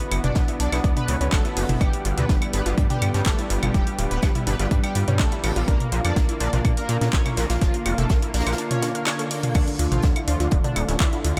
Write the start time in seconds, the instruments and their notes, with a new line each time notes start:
Already playing: analog synth pad D3 B3 F#4
0.00 synth pluck B4
0.11 analog synth bass F#1, analog polysynth B3, synth arpeggio sound E4 E5, synth pluck B4, closed hi-hat, open hi-hat, claves
0.24 analog synth bass F#1, analog polysynth D4 D5, synth pluck D6, closed hi-hat, mid tom
0.35 analog synth bass B1, analog polysynth B3, synth arpeggio sound D4 D5, synth pluck B4, kick, snare, closed hi-hat
0.48 analog polysynth B3, synth arpeggio sound E4 E5, synth pluck B4, closed hi-hat
0.60 analog synth bass B1, analog polysynth D4 D5, synth arpeggio sound D4 D5, synth pluck D6, closed hi-hat, open hi-hat
0.72 analog synth bass B1, analog polysynth B3, synth arpeggio sound E4 E5, synth pluck B4, snare, closed hi-hat, claves
0.84 analog synth bass C#2, analog polysynth B3, synth arpeggio sound D4 D5, synth pluck B4, kick, closed hi-hat
0.96 analog polysynth B3 B4, synth arpeggio sound D4 D5, synth pluck B5, closed hi-hat, mid tom
1.08 analog synth bass C#2, analog polysynth B3, synth arpeggio sound E4 E5, synth pluck B4, closed hi-hat, open hi-hat
1.21 analog synth bass C#2, analog polysynth B3, synth arpeggio sound C#4 C#5, synth pluck B4, closed hi-hat
1.32 analog synth bass F#1, analog polysynth A3 A4, synth arpeggio sound D4, synth pluck A5, kick, snare, clap, closed hi-hat, claves
1.45 analog polysynth B3, synth arpeggio sound E4 E5, synth pluck B4, closed hi-hat
1.56 analog synth bass F#1, analog polysynth B3, synth arpeggio sound E4 E5, synth pluck B4, open hi-hat
1.69 analog synth bass F#1, analog polysynth B3, synth arpeggio sound E4 E5, synth pluck B4, closed hi-hat, mid tom
1.81 analog synth bass G1, analog polysynth G3 G4, synth arpeggio sound D4 D5, analog synth pad G4, synth pluck G5, kick, closed hi-hat, claves
1.93 analog polysynth G3, synth pluck G4, closed hi-hat
2.05 analog synth bass G1, analog polysynth G3, synth arpeggio sound F4 F5, synth pluck G4, closed hi-hat, open hi-hat
2.17 analog synth bass D2, analog polysynth B3 B4, synth pluck B5, closed hi-hat, mid tom
2.29 analog synth bass G1, analog polysynth G3, synth arpeggio sound D4 D5, synth pluck G4, kick, snare, closed hi-hat
2.42 analog polysynth G3, synth arpeggio sound E4 E5, synth pluck G4, closed hi-hat, claves
2.53 analog synth bass G1, analog polysynth B3 B4, synth arpeggio sound D4 D5, synth pluck B5, closed hi-hat, open hi-hat
2.66 analog synth bass G1, analog polysynth G3, synth arpeggio sound F4 F5, synth pluck G4, snare, closed hi-hat
2.78 analog synth bass G2, analog polysynth G3, synth arpeggio sound D4 D5, synth pluck G4, kick, closed hi-hat
2.90 analog polysynth G3 G4, synth arpeggio sound D4 D5, synth pluck G5, closed hi-hat, mid tom
3.01 analog synth bass G2, analog polysynth G3, synth arpeggio sound F4 F5, synth pluck G4, closed hi-hat, open hi-hat, claves
3.14 analog synth bass G2, analog polysynth G3, synth arpeggio sound C#4 C#5, synth pluck G4, snare, closed hi-hat
3.25 analog synth bass G1, analog polysynth A3 A4, synth arpeggio sound D4 D5, synth pluck A5, kick, snare, clap, closed hi-hat
3.38 analog polysynth G3, synth arpeggio sound E4 E5, synth pluck G4, closed hi-hat
3.50 analog synth bass G1, analog polysynth G3, synth arpeggio sound F4 F5, synth pluck G4, closed hi-hat, open hi-hat
3.63 analog synth bass G1, analog polysynth G3, synth arpeggio sound F4 F5, synth pluck G4, closed hi-hat, mid tom, claves
3.74 analog synth bass D1, analog polysynth G3 G4, synth arpeggio sound D4 D5, synth pluck G5, kick, closed hi-hat
3.87 analog polysynth G3, synth pluck G4, closed hi-hat
3.98 analog synth bass D1, analog polysynth G3, synth arpeggio sound F4 F5, synth pluck G4, closed hi-hat, open hi-hat
4.11 analog synth bass D1, analog polysynth B3 B4, synth pluck B5, closed hi-hat
4.22 analog synth bass G1, analog polysynth G3, synth arpeggio sound D4 D5, synth pluck G4, kick, snare, closed hi-hat, claves
4.35 analog polysynth G3, synth arpeggio sound E4 E5, synth pluck G4, closed hi-hat, mid tom
4.47 analog synth bass G1, analog polysynth B3 B4, synth arpeggio sound D4 D5, synth pluck B5, closed hi-hat, open hi-hat
4.59 analog synth bass G1, analog polysynth G3, synth arpeggio sound F4 F5, synth pluck G4, snare, closed hi-hat
4.71 analog synth bass G2, analog polysynth G3, synth arpeggio sound D4 D5, synth pluck G4, kick, closed hi-hat
4.83 analog polysynth G3 G4, synth arpeggio sound D4 D5, synth pluck G5, closed hi-hat, claves
4.95 analog synth bass G2, analog polysynth G3, synth arpeggio sound F4 F5, synth pluck G4, closed hi-hat, open hi-hat
5.08 analog synth bass G2, analog polysynth G3, synth arpeggio sound C#4 C#5, synth pluck G4, closed hi-hat, mid tom
5.19 analog synth bass A1, analog polysynth A3 A4, synth arpeggio sound D4 D5, synth pluck A5, kick, snare, clap, closed hi-hat
5.32 analog polysynth G3, synth arpeggio sound E4 E5, synth pluck G4, closed hi-hat
5.44 analog synth bass A1, analog polysynth G3, synth arpeggio sound F4 F5, synth pluck G4, open hi-hat, claves
5.56 analog synth bass A1, analog polysynth G3, synth arpeggio sound F4 F5, synth pluck G4, closed hi-hat
5.68 analog synth bass A#1, analog synth pad D3 A#3 F4, analog polysynth A#3 A#4, synth arpeggio sound D4 D5, synth pluck A#5, kick, closed hi-hat
5.80 analog polysynth A#3, synth pluck A#4, closed hi-hat, mid tom
5.92 analog synth bass A#1, analog polysynth A#3, synth arpeggio sound F4 F5, synth pluck A#4, closed hi-hat, open hi-hat
6.04 analog synth bass F2, analog polysynth D4 D5, synth pluck D6, closed hi-hat, claves
6.16 analog synth bass A#1, analog polysynth A#3, synth arpeggio sound D4 D5, synth pluck A#4, kick, snare, closed hi-hat
6.29 analog polysynth A#3, synth arpeggio sound E4 E5, synth pluck A#4, closed hi-hat
6.40 analog synth bass A#1, analog polysynth D4 D5, synth arpeggio sound D4 D5, synth pluck D6, closed hi-hat, open hi-hat
6.53 analog synth bass A#1, analog polysynth A#3, synth arpeggio sound F4 F5, synth pluck A#4, snare, closed hi-hat, mid tom
6.65 analog synth bass A#2, analog polysynth A#3, synth arpeggio sound D4 D5, synth pluck A#4, kick, closed hi-hat, claves
6.77 analog polysynth A#3 A#4, synth arpeggio sound D4 D5, synth pluck A#5, closed hi-hat
6.89 analog synth bass A#2, analog polysynth A#3, synth arpeggio sound F4 F5, synth pluck A#4, closed hi-hat, open hi-hat
7.01 analog synth bass A#2, analog polysynth A#3, synth arpeggio sound C#4 C#5, synth pluck A#4, snare, closed hi-hat
7.13 analog synth bass A#1, analog polysynth C#4 C#5, synth arpeggio sound D4 D5, synth pluck C#6, kick, snare, clap, closed hi-hat
7.26 analog polysynth A#3, synth arpeggio sound E4 E5, synth pluck A#4, closed hi-hat, mid tom, claves
7.37 analog synth bass A#1, analog polysynth A#3, synth arpeggio sound F4 F5, synth pluck A#4, snare, closed hi-hat, open hi-hat
7.50 analog synth bass A#1, analog polysynth A#3, synth arpeggio sound F4 F5, synth pluck A#4, snare, closed hi-hat
7.61 analog synth bass F1, analog polysynth F3 F4, synth arpeggio sound D4 D5, synth pluck F5, kick, snare, closed hi-hat
7.74 analog polysynth A#3, synth pluck A#4, closed hi-hat
7.86 analog synth bass F1, analog polysynth A#3, synth arpeggio sound F4 F5, synth pluck A#4, closed hi-hat, open hi-hat, claves
7.98 analog synth bass F1, analog polysynth A3 A4, synth pluck A5, closed hi-hat, mid tom
8.09 analog synth bass A#1, analog polysynth A#3, synth arpeggio sound D4 D5, synth pluck A#4, kick, snare, closed hi-hat
8.22 analog polysynth A#3, synth arpeggio sound E4 E5, synth pluck A#4, closed hi-hat
8.34 analog synth bass A#1, analog polysynth A#3 A#4, synth arpeggio sound D4 D5, synth pluck A#5, snare, closed hi-hat, open hi-hat
8.40 snare, closed hi-hat
8.46 analog synth bass A#1, analog polysynth A#3, synth arpeggio sound F4 F5, synth pluck A#4, snare, closed hi-hat, claves
8.52 snare, closed hi-hat
8.58 analog polysynth A#3, synth arpeggio sound D4 D5, synth pluck A#4, closed hi-hat
8.71 analog polysynth C#4 C#5, synth arpeggio sound D4 D5, synth pluck C#6, closed hi-hat, mid tom
8.82 analog polysynth A#3, synth arpeggio sound D4 D5, synth pluck A#4, snare, closed hi-hat, open hi-hat
8.95 analog polysynth A#3, synth pluck A#4, synth arpeggio sound F5 F6, closed hi-hat
9.06 analog polysynth C#4 C#5, synth arpeggio sound D4 D5, synth pluck C#6, snare, clap, closed hi-hat, claves
9.19 analog polysynth A#3, synth arpeggio sound A4 A5, synth pluck A#4, closed hi-hat
9.31 analog polysynth A#3, synth pluck A#4, synth arpeggio sound D5 D6, open hi-hat
9.43 analog polysynth A#3, synth arpeggio sound F4 F5, synth pluck A#4, closed hi-hat, mid tom
9.55 analog synth bass D2, analog polysynth D3 D4, analog synth pad A3 F4, synth arpeggio sound D4 D5, synth pluck D5, kick, closed hi-hat, crash, claves
9.67 analog polysynth D3, synth pluck D4, closed hi-hat
9.79 analog synth bass D2, analog polysynth D3, synth pluck D4, synth arpeggio sound F4 F5, closed hi-hat, open hi-hat
9.91 analog synth bass A1, analog polysynth F3 F4, synth pluck F5, closed hi-hat, mid tom
10.02 analog synth bass D2, analog polysynth D3, synth pluck D4, synth arpeggio sound D4 D5, kick, snare, closed hi-hat
10.16 analog polysynth D3, synth pluck D4, synth arpeggio sound E4 E5, closed hi-hat, claves
10.28 analog synth bass D2, analog polysynth F3 F4, synth arpeggio sound D4 D5, synth pluck F5, closed hi-hat, open hi-hat
10.40 analog synth bass D2, analog polysynth D3, synth pluck D4, synth arpeggio sound F4 F5, snare, closed hi-hat
10.51 analog synth bass D1, analog polysynth D3, synth pluck D4, synth arpeggio sound D4 D5, kick, closed hi-hat
10.64 analog polysynth D3 D4, synth arpeggio sound D4 D5, synth pluck D5, closed hi-hat, mid tom
10.76 analog synth bass D1, analog polysynth D3, synth pluck D4, synth arpeggio sound F4 F5, closed hi-hat, open hi-hat, claves
10.88 analog synth bass D1, analog polysynth D3, synth arpeggio sound C#4 C#5, synth pluck D4, snare, closed hi-hat
11.00 analog synth bass D2, analog polysynth E3 E4, synth arpeggio sound F4 F5, synth pluck E5, kick, snare, clap, closed hi-hat
11.12 analog polysynth D3, synth pluck D4, synth arpeggio sound E4 E5, closed hi-hat
11.24 analog synth bass D2, analog polysynth D3, synth pluck D4, synth arpeggio sound F4 F5, closed hi-hat, open hi-hat